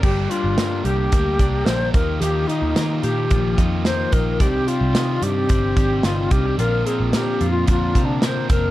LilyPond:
<<
  \new Staff \with { instrumentName = "Alto flute" } { \time 4/4 \key ees \major \tempo 4 = 110 g'8 f'4 g'4. c''8 bes'8 | g'8 ees'4 g'4 r8 c''8 bes'8 | g'8 f'4 g'4. f'8 g'8 | bes'8 aes'8 \tuplet 3/2 { g'4 f'8 f'4 d'8 } c''8 bes'8 | }
  \new Staff \with { instrumentName = "Clean electric guitar" } { \time 4/4 \key ees \major <g g'>8 d'8 bes8 g'8 bes8 d'8 bes8 ees8 | <ees g'>8 ees'8 bes8 g'8 f8 ees'8 bes8 ees'8 | <c d''>8 g'8 ees'8 d''8 c'8 g'8 ees'8 f'16 g'16 | <bes, f'>8 c'8 bes8 f'8 d8 c'8 bes8 c'8 | }
  \new Staff \with { instrumentName = "Overdriven electric guitar" } { \time 4/4 \key ees \major <g, d g bes d' g'>8 <g bes d' g'>8 <g, d g bes d' g'>4 <g bes d' g'>8 <g bes d' g'>8 <g, d g bes d' g'>8 <bes f' g'>8 | <ees f bes f' g'>8 <bes f' g'>8 <ees f bes f' g'>4 <f bes f' g'>8 <bes f' g'>8 <ees f bes f' g'>8 <bes f' g'>8 | <c ees g c' d' g'>8 <g c' d' g'>8 <c ees g c' d' g'>4 <g c' d' g'>8 <g c' d' g'>8 <c ees g c' d' g'>8 <g c' d' g'>8 | <bes, d f c' d' bes'>8 <f c' d' bes'>8 <bes, d f c' d' bes'>4 <f c' d' bes'>8 <f c' d' bes'>8 <bes, d f c' d' bes'>8 <f c' d' bes'>8 | }
  \new Staff \with { instrumentName = "Picked electric bass" } { \clef bass \time 4/4 \key ees \major g,,8 r16 g,,16 g,8 c,8 d,8 c,8 bes,,8 ees,8 | ees,8 r16 ees,16 ees8 bes,8 bes,,8 f,4 bes,,8 | c,8 r16 c,16 c8 g,8 g,,8 aes,,8 g,,8 c,8 | bes,,8 r16 bes,,16 bes,8 f,8 f,8 c4 f,,8 | }
  \new DrumStaff \with { instrumentName = "Drums" } \drummode { \time 4/4 <cymc bd>8 hh8 <hh sn>8 hh8 <hh bd>8 <hh bd>8 <hh sn>8 <hh bd>8 | hh8 hh8 <hh sn>8 hh8 <hh bd>8 <hh bd>8 <hh sn>8 <hh bd>8 | <hh bd>8 hh8 <hh sn>8 hh8 <hh bd>8 <hh bd>8 <hh sn>8 <hh bd>8 | hh8 hh8 <hh sn>8 hh8 <hh bd>8 <hh bd>8 <hh sn>8 <hh bd>8 | }
>>